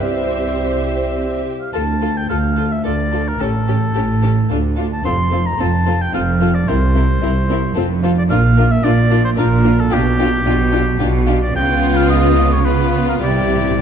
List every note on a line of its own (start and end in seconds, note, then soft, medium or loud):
0.01 1.53 C2 soft
0.01 1.42 G3 soft
0.01 1.43 C4 medium
0.01 1.43 E4 soft
0.01 1.50 G4 soft
0.01 1.53 C5 soft
0.01 1.42 C5 soft
0.01 1.46 C5 soft
0.01 1.42 E5 soft
0.01 1.51 E5 soft
1.60 1.73 F5 soft
1.73 2.23 D2 medium
1.73 2.24 D2 soft
1.73 1.82 F4 soft
1.73 1.82 A4 soft
1.73 2.19 A5 medium
2.02 2.10 F4 soft
2.02 2.10 A4 soft
2.17 2.29 G5 medium
2.30 2.79 D2 soft
2.30 2.79 D2 medium
2.30 2.38 F4 soft
2.30 2.38 A4 soft
2.30 2.73 F5 medium
2.57 2.65 F4 soft
2.57 2.65 A4 soft
2.72 2.85 E5 medium
2.84 3.34 D2 soft
2.84 3.34 D2 medium
2.84 2.93 F4 soft
2.84 2.92 A4 soft
2.84 2.94 A4 soft
2.84 3.30 D5 medium
3.12 3.20 F4 soft
3.12 3.20 A4 soft
3.28 3.42 A#4 medium
3.40 3.89 A1 medium
3.40 3.89 A2 soft
3.40 3.48 C#4 soft
3.40 3.48 G4 soft
3.40 3.48 A4 soft
3.40 4.64 A4 medium
3.68 3.77 C#4 soft
3.68 3.76 G4 soft
3.68 3.76 A4 soft
3.94 4.44 A1 soft
3.94 4.44 A2 medium
3.94 4.04 C#4 soft
3.94 4.03 G4 soft
3.94 4.02 A4 soft
4.22 4.31 C#4 soft
4.22 4.30 G4 soft
4.22 4.30 A4 soft
4.50 4.99 D2 medium
4.50 4.59 D4 soft
4.50 4.58 F4 soft
4.50 4.58 A4 soft
4.76 4.86 D4 soft
4.76 4.85 F4 soft
4.76 4.84 A4 soft
4.93 5.05 A5 medium
5.05 5.53 F1 medium
5.05 5.53 F2 medium
5.05 5.13 C4 medium
5.05 5.13 F4 soft
5.05 5.13 A4 soft
5.05 5.48 C6 medium
5.31 5.40 C4 soft
5.31 5.40 F4 soft
5.31 5.39 A4 soft
5.47 5.62 A#5 medium
5.57 6.07 F1 medium
5.57 6.07 F2 medium
5.57 5.67 C4 medium
5.57 5.68 F4 soft
5.57 5.65 A4 soft
5.57 6.03 A5 medium
5.86 5.95 C4 soft
5.86 5.94 F4 soft
5.86 5.94 A4 soft
6.02 6.14 G5 medium
6.13 6.62 F1 medium
6.13 6.62 F2 medium
6.13 6.21 C4 medium
6.13 6.21 F4 soft
6.13 6.22 A4 soft
6.13 6.56 F5 medium
6.41 6.49 C4 soft
6.41 6.49 F4 medium
6.41 6.49 A4 soft
6.54 6.69 D5 medium
6.68 7.16 C2 medium
6.68 6.76 C4 medium
6.68 6.76 E4 medium
6.68 6.76 A#4 medium
6.68 7.89 C5 medium
6.94 7.03 C4 soft
6.94 7.02 E4 soft
6.94 7.04 A#4 soft
7.22 7.70 C2 medium
7.22 7.30 C4 soft
7.22 7.30 E4 medium
7.22 7.31 A#4 soft
7.49 7.57 C4 medium
7.49 7.58 E4 medium
7.49 7.58 A#4 soft
7.76 8.24 F1 medium
7.76 8.24 F2 medium
7.76 7.84 C4 medium
7.76 7.84 F4 medium
7.76 7.84 A4 medium
8.03 8.11 C4 medium
8.03 8.11 F4 medium
8.03 8.12 A4 medium
8.18 8.24 D5 medium
8.29 8.78 A#1 medium
8.29 8.78 A#2 medium
8.29 8.37 D4 medium
8.29 8.39 F4 medium
8.29 8.38 A#4 medium
8.29 8.73 F5 medium
8.57 8.65 D4 medium
8.57 8.66 F4 medium
8.57 8.65 A#4 medium
8.72 8.86 E5 medium
8.84 9.31 A#1 medium
8.84 9.31 A#2 medium
8.84 8.92 D4 medium
8.84 8.93 F4 medium
8.84 8.92 A#4 medium
8.84 9.24 D5 medium
9.10 9.18 D4 medium
9.10 9.19 F4 medium
9.10 9.19 A#4 medium
9.25 9.31 C5 medium
9.37 9.86 A#1 medium
9.37 9.86 A#2 medium
9.37 9.45 D4 medium
9.37 9.46 F4 medium
9.37 9.46 A#4 medium
9.37 9.81 A#4 medium
9.64 9.72 D4 medium
9.64 9.73 F4 medium
9.64 9.72 A#4 medium
9.80 9.94 A4 medium
9.91 10.39 B1 medium
9.91 10.39 B2 medium
9.91 10.00 D4 medium
9.91 10.00 F4 medium
9.91 9.99 G4 medium
9.91 11.14 G4 loud
10.19 10.27 D4 medium
10.19 10.27 F4 medium
10.19 10.27 G4 medium
10.45 10.93 B1 medium
10.45 10.94 B2 medium
10.45 10.54 D4 medium
10.45 10.53 F4 medium
10.45 10.54 G4 medium
10.72 10.81 D4 medium
10.72 10.80 F4 medium
10.72 10.81 G4 medium
10.99 11.47 B1 medium
10.99 11.48 B2 medium
10.99 11.08 D4 medium
10.99 11.07 F4 medium
10.99 11.08 G4 medium
11.27 11.35 D4 medium
11.27 11.35 F4 medium
11.27 11.35 G4 medium
11.42 11.54 D5 medium
11.54 13.18 C#2 medium
11.54 13.19 C#3 medium
11.54 12.60 B3 medium
11.54 12.60 F4 medium
11.54 12.61 F4 medium
11.54 11.98 G5 loud
11.97 12.09 F5 medium
12.10 12.54 D#5 medium
12.52 12.67 C#5 medium
12.64 13.21 B3 medium
12.64 13.21 F4 medium
12.64 13.08 B4 medium
13.09 13.15 A#4 medium
13.22 13.82 C2 medium
13.22 13.29 C3 soft
13.22 13.82 C3 medium
13.22 13.80 G3 medium
13.22 13.80 E4 soft
13.22 13.80 G4 medium
13.22 13.82 D5 medium
13.31 13.38 C3 soft
13.39 13.45 C3 soft
13.55 13.61 C3 soft
13.62 13.70 C3 soft
13.71 13.77 C3 soft